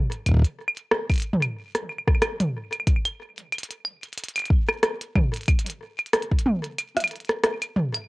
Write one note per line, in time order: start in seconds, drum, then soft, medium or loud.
0.12 closed hi-hat soft
0.26 kick medium
0.26 closed hi-hat medium
0.26 claves soft
0.29 kick medium
0.31 kick medium
0.34 kick medium
0.37 kick medium
0.39 kick medium
0.42 kick loud
0.42 closed hi-hat medium
0.68 claves medium
0.77 closed hi-hat soft
0.91 cross-stick loud
1.10 kick medium
1.10 closed hi-hat soft
1.10 claves medium
1.12 closed hi-hat soft
1.14 closed hi-hat soft
1.16 closed hi-hat soft
1.18 closed hi-hat soft
1.20 closed hi-hat soft
1.22 closed hi-hat soft
1.33 mid tom medium
1.42 closed hi-hat soft
1.42 claves medium
1.75 cross-stick medium
1.75 closed hi-hat medium
1.89 claves soft
1.98 claves soft
2.08 kick loud
2.08 cross-stick medium
2.08 claves soft
2.15 claves soft
2.22 cross-stick loud
2.22 closed hi-hat medium
2.22 claves medium
2.40 closed hi-hat soft
2.40 mid tom loud
2.73 closed hi-hat soft
2.73 claves soft
2.80 claves soft
2.87 kick loud
2.87 closed hi-hat medium
2.87 claves soft
2.96 claves soft
3.05 closed hi-hat medium
3.05 claves medium
3.38 closed hi-hat soft
3.52 closed hi-hat soft
3.52 claves medium
3.58 closed hi-hat soft
3.63 closed hi-hat medium
3.71 closed hi-hat medium
3.85 claves medium
4.03 closed hi-hat soft
4.13 closed hi-hat soft
4.18 closed hi-hat medium
4.24 closed hi-hat medium
4.28 closed hi-hat soft
4.36 closed hi-hat medium
4.36 claves medium
4.38 closed hi-hat soft
4.38 claves soft
4.40 claves soft
4.42 claves soft
4.44 closed hi-hat soft
4.44 claves soft
4.46 claves soft
4.48 kick loud
4.48 claves soft
4.68 cross-stick medium
4.68 claves medium
4.83 cross-stick loud
4.83 closed hi-hat medium
5.01 closed hi-hat medium
5.15 kick loud
5.15 mid tom loud
5.15 claves medium
5.34 closed hi-hat soft
5.36 closed hi-hat soft
5.41 closed hi-hat soft
5.43 closed hi-hat soft
5.46 kick loud
5.46 closed hi-hat soft
5.48 closed hi-hat medium
5.48 claves medium
5.59 closed hi-hat medium
5.66 closed hi-hat medium
5.70 closed hi-hat medium
5.99 closed hi-hat soft
5.99 claves medium
6.06 closed hi-hat soft
6.13 cross-stick loud
6.13 closed hi-hat medium
6.22 closed hi-hat soft
6.31 kick medium
6.39 closed hi-hat medium
6.46 mid tom loud
6.64 closed hi-hat soft
6.78 closed hi-hat medium
6.78 claves medium
6.97 cross-stick medium
6.97 closed hi-hat medium
7.00 closed hi-hat soft
7.04 closed hi-hat soft
7.04 claves medium
7.08 closed hi-hat soft
7.11 closed hi-hat soft
7.16 closed hi-hat soft
7.20 closed hi-hat soft
7.25 closed hi-hat soft
7.29 cross-stick medium
7.29 closed hi-hat soft
7.44 cross-stick loud
7.44 closed hi-hat medium
7.62 closed hi-hat medium
7.62 claves medium
7.76 mid tom loud
7.94 closed hi-hat soft
7.94 claves medium